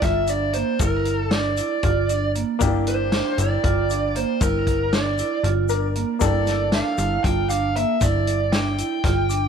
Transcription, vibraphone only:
0.03 F4
0.29 D4
0.55 A#3
0.81 E4
1.32 D4
1.58 E4
1.84 F4
2.10 D4
2.35 A#3
2.62 E4
3.14 D4
3.40 E4
3.65 F4
3.90 D4
4.16 A#3
4.42 E4
4.93 D4
5.19 E4
5.45 F4
5.70 D4
5.96 A#3
6.21 E4
6.73 D4
6.99 E4
7.25 F4
7.50 D4
7.76 A#3
8.02 E4
8.53 D4
8.79 E4
9.04 F4
9.29 D4

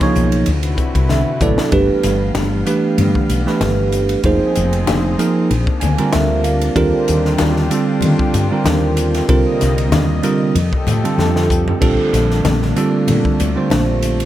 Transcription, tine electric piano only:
0.02 F3 A#3 D#4 G#4 C#5
1.10 E5
1.41 F#3 B3 E4 A4 D5 A5
1.71 E3 A3 D4 G4 B4
2.66 E3 A3 D4 G4 B4
3.46 E3 A3 D4 G4 B4
4.24 F3 A#3 D#4 G#4 C5
5.18 F3 A#3 D#4 G#4 A#4
5.80 G#5
5.98 D3 G3 C4 F4 A#4
6.13 E5
6.44 F5
6.76 D3 G3 C4 F4 A#4
7.70 D3 G3 C4 F4 A4
8.51 D3 G3 C4 F4 A#4
9.28 D3 G3 C4 F4 A#4
10.22 D3 G3 C4 F4 A#4
11.04 D3 G3 C4 F4 A4
11.81 D3 G3 C4 F4 A4
12.76 D3 G3 C4 F4 A4
13.56 D3 G3 C4 F4 C5

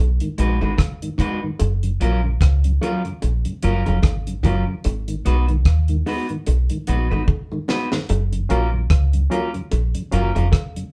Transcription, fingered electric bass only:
0.00 B1
0.39 A#1
0.62 G#1
1.61 F#1
2.02 A#1
2.41 C#2
3.24 A#1
3.64 F#1
3.87 F1
4.04 G#1
4.44 F#1
4.86 G#1
5.26 B1
5.66 D#2
6.48 B1
6.89 A#1
7.12 G#1
8.10 F#1
8.51 A#1
8.91 C#2
9.73 A#1
10.13 F#1
10.36 F1

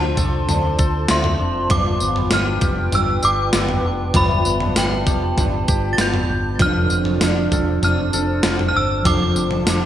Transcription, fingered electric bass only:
Already playing: D2
0.18 C2
0.49 D2
0.79 D2
1.10 D2
1.40 F1
1.71 G1
2.01 G1
2.32 G1
2.62 F1
2.93 G1
3.23 G1
3.54 G1
3.84 F1
4.15 G1
4.46 G1
4.76 G1
5.07 F1
5.38 G1
5.69 G1
5.98 G1
6.29 G1
6.60 F1
6.91 F1
7.21 F1
7.52 E1
7.83 F1
8.14 F1
8.44 F1
8.76 G1
9.05 F1
9.35 F1
9.66 F1

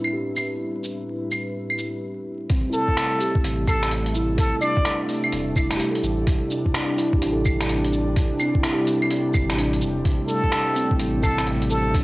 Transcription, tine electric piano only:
Already playing: B3 D4
0.13 G4
2.50 C4
2.70 E4
3.21 G4
4.16 E4
4.62 D4
5.57 E4
5.77 G4
5.91 A4
6.51 D4
6.98 E4
7.18 G4
7.32 A4
8.40 C4
8.60 E4
8.73 G4
9.58 D4
10.76 C4
10.96 E4
11.94 D4

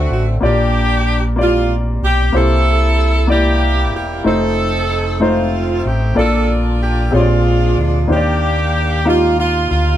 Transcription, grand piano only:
Already playing: D3 C4 F#4 A4 D5
0.40 A#2 A#3 F4 G4 D5
1.36 A#3 F4 G4 D5
2.32 C3 A#3 E4 G4 C5
3.27 A#3 E4 G4 D5
4.24 A3 D#4 F4 C5
5.20 A3 D#4 F4 C5
6.15 A#2 A#3 F4 A4 D5
7.11 A#2 C4 G4 G#4 C#5
7.20 D5
8.07 D#3 A#3 D4 G4 C5
8.16 D5
9.05 A#3 D#4 G4 F5

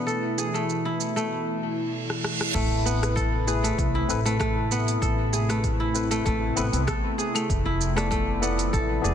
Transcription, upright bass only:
2.55 A1
3.78 C2
4.09 A1
5.02 A1
6.26 A1
6.57 A1
6.73 C2
7.50 F1
8.74 A1
9.04 F1

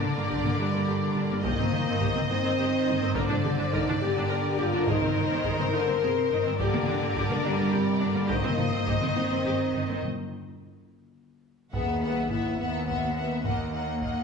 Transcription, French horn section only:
Already playing: D4
0.29 D4
0.59 G3
1.45 A#3
2.31 C4
3.16 D4
3.73 D#4
4.01 G4
4.59 F4
4.89 D#4
5.75 A#4
6.59 G4
7.18 D4
7.46 G3
8.31 A#3
9.16 C4
11.73 G#4
12.30 E4
12.58 B3
13.17 B3
13.46 A#3

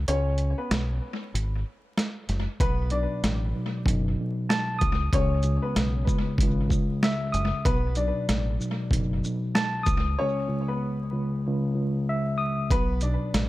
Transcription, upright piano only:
0.08 C#4 C#5
0.58 B3 B4
2.60 B3 B4
2.91 D4 D5
5.14 C#4 C#5
5.62 B3 B4
7.65 B3 B4
7.97 D4 D5
10.19 C#4 C#5
10.68 B3 B4
12.71 B3 B4
13.02 D4 D5

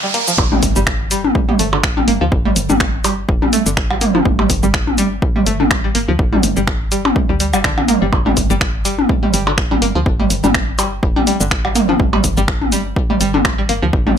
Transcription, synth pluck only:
0.03 G3
0.14 A#3
0.28 F3
0.52 G3
0.76 G3
1.11 G3
1.49 G3
1.59 A3
1.73 D3
1.97 G3
2.08 A#3
2.21 F3
2.45 G3
2.70 G3
3.04 G3
3.42 G3
3.53 A3
3.66 D3
3.91 G3
4.01 A#3
4.15 F3
4.39 G3
4.63 G3
4.98 G3
5.36 G3
5.47 A3
5.60 D3
5.84 G3
5.95 A#3
6.08 F3
6.33 G3
6.57 G3
6.92 G3
7.29 G3
7.40 G3
7.54 G3
7.64 D3
7.78 D3
7.88 A#3
8.02 G3
8.26 G3
8.50 G3
8.85 G3
9.23 G3
9.34 G3
9.47 D3
9.71 G3
9.82 A#3
9.95 F3
10.20 G3
10.44 G3
10.79 G3
11.16 G3
11.27 G3
11.40 D3
11.65 G3
11.75 A#3
11.89 F3
12.13 G3
12.37 G3
12.72 G3
13.10 G3
13.21 G3
13.34 D3
13.58 G3
13.69 A#3
13.82 F3
14.07 G3

